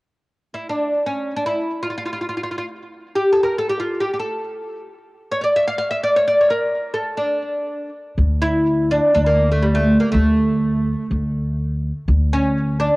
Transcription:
0.54 oud E4
0.69 oud D4
1.06 oud C#4
1.36 oud D4
1.46 oud E4
1.83 oud F4
1.90 oud F4
1.98 oud F4
2.06 oud F4
2.13 oud F4
2.21 oud F4
2.29 oud F4
2.37 oud F4
2.43 oud F4
2.51 oud F4
2.58 oud F4
3.15 oud G4
3.33 oud A4
3.43 oud A#4
3.58 oud A4
3.69 oud G4
3.80 oud F4
4.00 oud G4
4.13 oud G4
4.19 oud A4
5.31 oud C#5
5.41 oud C#5 D5
5.56 oud E5
5.68 oud F5
5.78 oud F5
5.91 oud E5
6.03 oud D5
6.16 oud C#5
6.28 oud D5
6.41 oud C#5
6.50 oud A#4
6.94 oud A4
7.17 oud D4
8.18 upright bass D2
8.42 oud E4
8.91 oud D4
9.15 upright bass D2, oud D4
9.26 oud A#3
9.52 oud A3
9.63 oud G3
9.75 oud A3
10.00 oud A#3
10.12 upright bass D2, oud A3
11.11 upright bass D2
12.08 upright bass D2
12.33 oud C#4
12.80 oud D4

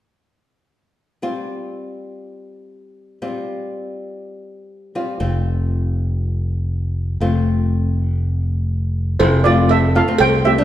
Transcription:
1.22 nylon-string guitar G3 C4 F4
3.22 nylon-string guitar G3 C4 F4
4.95 nylon-string guitar G3 C4 F4
5.20 fingered electric bass F1, nylon-string guitar A3 C4 F4
7.21 fingered electric bass F1, nylon-string guitar A3 C4 F4
9.20 fingered electric bass F1, steel pan E4 C5, cowbell
9.44 nylon-string guitar A3 C4 F4, steel pan F4 D5
9.69 steel pan A4 E5, cowbell
9.95 nylon-string guitar A3 C4 F4, steel pan A4 F5
10.08 nylon-string guitar A3 C4 F4
10.19 fingered electric bass C2, steel pan C5 G5, cowbell
10.45 nylon-string guitar A3 C4 F4, steel pan G4 E5
10.58 nylon-string guitar A3 C4 D4

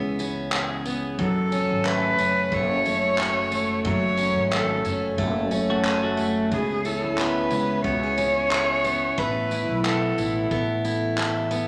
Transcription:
Already playing: upright bass C#2, steel-string acoustic guitar C#3 E3 B3 C#4 G#4
0.19 steel-string acoustic guitar B3 C#4, tambourine
0.52 steel-string acoustic guitar C#4 G#4, clap
0.86 steel-string acoustic guitar B3, tambourine
1.19 upright bass F#1, steel-string acoustic guitar F#2 F#3, cello A4, kick
1.52 steel-string acoustic guitar C#4, tambourine
1.70 upright bass G#1
1.85 steel-string acoustic guitar A3, cello B4, clap
2.18 upright bass F#1, steel-string acoustic guitar C#4, tambourine
2.52 upright bass F#1, steel-string acoustic guitar A3 A4, cello C#5, kick
2.85 steel-string acoustic guitar A3 C#4, tambourine
3.18 steel-string acoustic guitar C#4 F#4, clap
3.52 steel-string acoustic guitar A3, tambourine
3.85 upright bass F#1, steel-string acoustic guitar F#2 F#3, cello C#5, kick
4.17 steel-string acoustic guitar C#4, tambourine
4.37 upright bass G#1
4.51 steel-string acoustic guitar A3, cello A4, clap
4.85 upright bass F#1, steel-string acoustic guitar C#4, tambourine
5.18 upright bass F#1, steel-string acoustic guitar A3 A4, kick
5.51 steel-string acoustic guitar A3 C#4, tambourine
5.70 clean electric guitar A3 F#4
5.85 clean electric guitar C#4 A4, steel-string acoustic guitar C#4 F#4, clap
6.03 clean electric guitar A3 F#4
6.17 steel-string acoustic guitar A3, tambourine
6.52 upright bass C#2, steel-string acoustic guitar C#3 B3, cello G#4, kick
6.85 steel-string acoustic guitar C#4 E4, cello A4, tambourine
7.04 upright bass D2
7.18 steel-string acoustic guitar B3, cello B4, clap
7.51 upright bass C#2, steel-string acoustic guitar C#4 E4, tambourine
7.84 upright bass C#2, steel-string acoustic guitar B3 F#4, cello C#5, kick
8.03 steel-string acoustic guitar G#4
8.17 steel-string acoustic guitar B3 C#4, tambourine
8.51 steel-string acoustic guitar E4 G#4, clap
8.84 steel-string acoustic guitar B3, tambourine
9.17 upright bass A1, steel-string acoustic guitar A3 B3, cello B4, kick
9.51 steel-string acoustic guitar E4, tambourine
9.69 upright bass B1
9.84 steel-string acoustic guitar B3, cello A4, clap
10.18 upright bass A1, steel-string acoustic guitar E4, tambourine
10.51 upright bass A1, steel-string acoustic guitar B3 A4, kick
10.85 steel-string acoustic guitar B3 E4, tambourine
11.18 steel-string acoustic guitar E4 A4, clap
11.51 steel-string acoustic guitar B3, tambourine

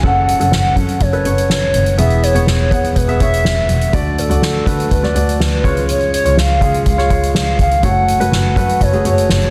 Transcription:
Already playing: grand piano F5
0.03 double bass F#1, grand piano C#4 A4 F#5, soft synth lead F#5, kick, crash
0.28 closed hi-hat
0.39 double bass F#1, grand piano C#4 A4 F#5, closed hi-hat
0.51 double bass F#1, soft synth lead F#5, snare
0.76 double bass F#2, grand piano C#4 A4 F#5, kick, closed hi-hat
0.88 closed hi-hat
1.00 double bass F#1, soft synth lead C#5, kick, closed hi-hat
1.12 grand piano C#4 A4 B4, closed hi-hat
1.24 double bass F#1, grand piano C#4 A4 C#5, closed hi-hat
1.38 closed hi-hat
1.50 double bass F#1, soft synth lead C#5, snare
1.74 double bass F#1, closed hi-hat
1.86 closed hi-hat
1.98 double bass E1, grand piano E3 B3 G#4 E5, soft synth lead E5, closed hi-hat
2.10 closed hi-hat
2.23 soft synth lead C#5, closed hi-hat
2.34 double bass E1, grand piano B3 G#4 C#5, closed hi-hat
2.47 double bass E1, snare
2.71 double bass E2, grand piano B3 G#4 F#5, kick, closed hi-hat
2.84 closed hi-hat
2.96 double bass E1, soft synth lead B4, kick, closed hi-hat
3.07 grand piano B3 G#4 E5, closed hi-hat
3.20 double bass E1, grand piano B3 G#4 C#5, soft synth lead E5, kick, closed hi-hat
3.34 closed hi-hat
3.44 double bass E1, snare
3.69 double bass E1, closed hi-hat
3.81 closed hi-hat
3.93 double bass D2, grand piano D3 A3 F#4 D5, soft synth lead D5, kick, closed hi-hat
4.18 soft synth lead A4, closed hi-hat
4.29 double bass D2, grand piano A3 F#4 D5, closed hi-hat
4.42 double bass D2, snare
4.66 double bass D3, grand piano A3 F#4 B4, kick, closed hi-hat
4.80 closed hi-hat
4.91 double bass D2, soft synth lead B4, kick, closed hi-hat
5.03 grand piano A3 F#4 D5, snare
5.15 double bass D2, grand piano A3 F#4 D5, closed hi-hat
5.29 closed hi-hat
5.39 double bass D2, soft synth lead B4, snare
5.63 double bass C#2, grand piano C#3 G#3 F4 C#5, kick, closed hi-hat
5.77 closed hi-hat
5.89 soft synth lead C#5, closed hi-hat
6.00 closed hi-hat
6.14 soft synth lead C#5, closed hi-hat
6.24 double bass C#2, grand piano G#3 F4 C#5, closed hi-hat
6.37 double bass C#2, soft synth lead F5, snare
6.61 double bass C#3, grand piano G#3 F4 G#4, kick, closed hi-hat
6.74 closed hi-hat
6.86 double bass C#2, soft synth lead F5, kick, closed hi-hat
6.97 grand piano G#3 F4 C#5, snare
7.09 double bass C#2, grand piano G#3 F4 C#5, kick, closed hi-hat
7.23 closed hi-hat
7.34 double bass C#2, soft synth lead F5, snare
7.59 double bass C#2, soft synth lead F5, kick, closed hi-hat
7.71 closed hi-hat
7.83 double bass F#1, grand piano A3 F#4 C#5, soft synth lead F#5, kick, closed hi-hat
8.08 closed hi-hat
8.19 double bass F#1, grand piano A3 F#4 B4, closed hi-hat
8.32 double bass F#1, soft synth lead F#5, snare
8.56 double bass F#2, grand piano A3 F#4 B4, kick, closed hi-hat
8.69 closed hi-hat
8.81 double bass F#1, soft synth lead C#5, kick, closed hi-hat
8.93 grand piano A3 F#4 G#4, closed hi-hat
9.05 double bass F#1, grand piano A3 F#4 C#5, soft synth lead C#5, closed hi-hat
9.18 closed hi-hat
9.29 double bass F#1, soft synth lead C#5, snare
9.41 closed hi-hat

